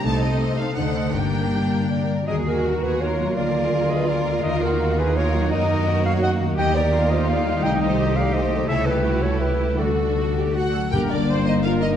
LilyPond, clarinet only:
\new Staff \with { instrumentName = "Clarinet" } { \time 3/4 \key g \minor \tempo 4 = 167 r2. | r2 d''4 | \key ees \minor ees''8 bes'4 ces''8 des''4 | d''4. ees''8 d''4 |
ees''8 bes'4 ces''8 des''4 | ees''4. f''8 ges''8 r8 | \key g \minor g''8 d''4 ees''8 f''4 | g''8 ees''4 f''8 ees''4 |
e''8 b'4 cis''8 b'4 | a'2 fis'4 | g'8 d'4 ees'8 f'8 ees'8 | }